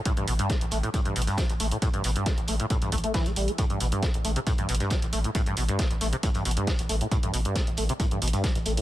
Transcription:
<<
  \new Staff \with { instrumentName = "Acid bass" } { \clef bass \time 4/4 \key a \minor \tempo 4 = 136 a,16 g,16 b,16 g,16 c'16 a,,16 a16 a,16 a,16 g,16 b,16 g,16 a16 a,,16 a16 a,16 | a,16 g,16 b,16 g,16 c'16 a,,16 a16 a,16 a,16 g,16 a16 a16 e16 a16 g16 a16 | a,16 g,16 b,16 g,16 c'16 a,,16 a16 c16 a,16 g,16 b,16 g,16 a16 a,,16 a16 a,16 | a,16 g,16 b,16 g,16 c'16 a,,16 a16 c16 a,16 g,16 b,16 g,16 a16 a,,16 a16 a,16 |
a,16 g,16 b,16 g,16 c'16 a,,16 a16 c16 a,16 g,16 b,16 g,16 a16 a,,16 a16 a,16 | }
  \new Staff \with { instrumentName = "Sub bass" } { \clef bass \time 4/4 \key a \minor r16 a,,16 a,,16 r8 a,,16 a,,16 r8 a,,16 a,,16 r8 a,,16 a,,16 r16 | r16 a,,16 a,,16 r8 a,,16 a,,16 r8 a,,16 a,,16 r8 a,,16 a,,16 r16 | r16 a,,16 a,,16 r8 a,,16 a,,16 r8 a,,16 a,,16 r8 a,,16 a,,16 r16 | r16 a,,16 a,,16 r8 a,,16 a,,16 r8 a,,16 a,,16 r8 a,,16 a,,16 r16 |
r16 a,,16 a,,16 r8 a,,16 a,,16 r8 a,,16 a,,16 r8 a,,16 a,,16 r16 | }
  \new DrumStaff \with { instrumentName = "Drums" } \drummode { \time 4/4 <hh bd>16 hh16 <hh hho>16 hh16 <hh bd sn>16 hh16 <hh hho>16 hh16 <hh bd>16 hh16 <hh hho>32 hh32 hh16 <hh bd sn>16 hh16 <hh hho>16 hh16 | <hh bd>16 hh16 <hh hho>16 hh16 <hh bd sn>16 hh16 <hh hho>16 hh16 <hh bd>16 hh16 <hh hho bd>32 hh32 hh16 <hh hho bd sn>16 hh16 <hh hho>16 hh16 | <hh bd>16 hh16 <hh hho>16 hh16 <hh bd sn>16 hh16 <hh hho>16 hh16 <hh bd>16 hh16 <hh hho>32 hh32 hh16 <hh bd sn>16 hh16 <hh hho>16 hh16 | <hh bd>16 hh16 <hh hho>16 hh16 <hh bd sn>16 hh16 <hh hho>16 hh16 <hh bd>16 hh16 <hh hho>32 hh32 hh16 <hh hho bd sn>16 hh16 <hh hho>16 hh16 |
<hh bd>16 hh16 <hh hho>16 hh16 <hh bd sn>16 hh16 <hh hho>16 hh16 <hh bd>16 hh16 <hh hho>32 hh32 hh16 <hh bd sn>16 hh16 <hh hho>16 hh16 | }
>>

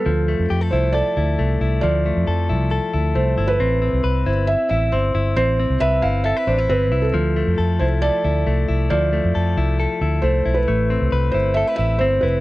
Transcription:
<<
  \new Staff \with { instrumentName = "Felt piano" } { \time 4/4 \key d \dorian \tempo 4 = 136 a'4 r8 c''8 d''2 | d''2 r4 c''8. b'16~ | b'4. c''8 e''8 e''8 c''4 | c''4 e''8 f''8 e''8 c''8 b'8. a'16~ |
a'4 r8 c''8 d''2 | d''2 r4 c''8. b'16~ | b'4. c''8 e''8 e''8 c''8 b'8 | }
  \new Staff \with { instrumentName = "Clean electric guitar" } { \time 4/4 \key d \dorian f8 a8 g'16 a'16 e'8 a'8 e'8 a8 e'8 | f8 a8 a'8 e'8 a'8 e'8 a8 e'8 | c'8 c'8 b'8 e'4 e'8 c'8 e'8 | c'8 c'8 b'8 e'8 a'16 b'16 d'16 e'16 c'8 e'8 |
f8 a8 a'8 e'8 a'8 e'8 a8 e'8 | f8 a8 a'8 e'8 a'8 e'8 a8 e'8 | a8 c'8 b'8 e'8 a'16 b'16 e'8 c'8 e'8 | }
  \new Staff \with { instrumentName = "Fingered electric bass" } { \clef bass \time 4/4 \key d \dorian d,8. f,16 f,8 c,8. r16 d,8 c,8 c,8 | d,8. f,16 f,8 c,8. r16 d,8 c,8 g,,8 | a,,8. c,16 c,8 g,,8. r16 a,,8 g,,8 g,,8 | a,,8. c,16 c,8 g,,8. r16 a,,8 g,,8 c,8 |
d,8. f,16 f,8 c,8. r16 d,8 c,8 c,8 | d,8. f,16 f,8 c,8. r16 d,8 c,8 b,,8 | a,,8. c,16 c,8 g,,8. r16 a,,8 g,,8 f,,8 | }
>>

